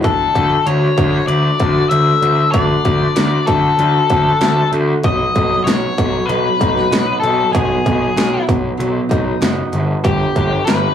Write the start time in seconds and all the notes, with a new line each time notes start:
0.02 D2 D3 A4, kick, closed hi-hat
0.34 D2 D3, kick, closed hi-hat
0.66 D2 F#3 C#5, closed hi-hat
0.97 D2 D3, kick, closed hi-hat
1.27 D2 F#3 D5, closed hi-hat
1.59 D2 D4, kick, closed hi-hat
1.89 D2 A3 E5, closed hi-hat
2.22 D2 D3, closed hi-hat
2.52 D2 D3 D5, kick, closed hi-hat
2.85 D2 D3, kick, closed hi-hat
3.16 D2 F#3, snare, closed hi-hat
3.46 D2 D3 A4, kick, closed hi-hat
3.78 D2 F#3, closed hi-hat
4.10 D2 D4, kick, closed hi-hat
4.41 D2 A3, snare, closed hi-hat
4.72 D2 D3, closed hi-hat
5.04 B1 B2 D#5, kick, closed hi-hat
5.34 B1 B2, kick, closed hi-hat
5.64 B1 F#3 C#5, snare, closed hi-hat
5.97 B1 B2, kick, closed hi-hat
6.26 B1 F#3 B4, closed hi-hat
6.59 B1 D#4, kick, closed hi-hat
6.77 snare
6.91 B1 B3, snare, closed hi-hat
7.20 B1 B2 A4, closed hi-hat
7.52 B1 B2 G#4, kick, closed hi-hat
7.85 B1 B2, kick, closed hi-hat
8.16 B1 F#3, snare, closed hi-hat
8.47 B1 B2, kick, closed hi-hat
8.77 B1 F#3, closed hi-hat
9.09 B1 D#4, kick, closed hi-hat
9.41 F#1 B3, snare, closed hi-hat
9.72 G1 G2, closed hi-hat
10.04 G1 G2 G4, kick, closed hi-hat
10.35 G1 D3, kick, closed hi-hat
10.65 G1 G3 B4, snare, closed hi-hat